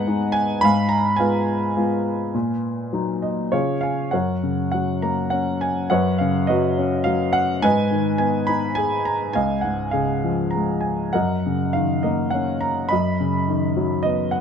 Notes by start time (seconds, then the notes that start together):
Already playing: G#2 G#3 B3 D#4 B4 D#5 F#5 G#5
0.07 G#3 B3 D#4
0.32 G#5
0.61 G#2 F5 G#5 B5
0.89 A#5
1.16 G#3 B3 F4 F5 G#5
1.20 B4
1.76 G#3 B3 F4
2.34 A#2
2.93 F#3 D#4
3.22 D#5
3.52 C#3 F4 G#4 C#5 F5
3.81 F5 G#5
4.11 F#2 A#4 C#5 F#5
4.43 C#3
4.72 F#3 F#5
5.02 A#3 A#5
5.30 C#4 F#5
5.61 G#5
5.90 F#2 B4 C#5 F#5
6.18 C#3 F5
6.47 F#3 F#4 B4 D#5
6.78 C#4
7.04 F#3 F5
7.33 F#5
7.62 G#2 B4 D#5 G#5
7.91 D#3
8.18 B3 G#5
8.47 D#4 B5
8.75 G#4 G#5
9.05 A#5
9.33 C#2 D#5 F5 G#5
9.61 G#2 F#5
9.91 C#3 G#4 F5
10.24 F3
10.51 A#5
10.55 G#3
10.81 G#5
11.13 F#2 A#4 D#5 F#5
11.46 C#3
11.73 D#3 F5
12.03 A#3 D#5
12.30 C#4 F#5
12.61 A#5
12.89 F#2 D#5 B5
13.20 C#3
13.48 D#3
13.77 F#3
14.03 B3 D#5
14.31 F#5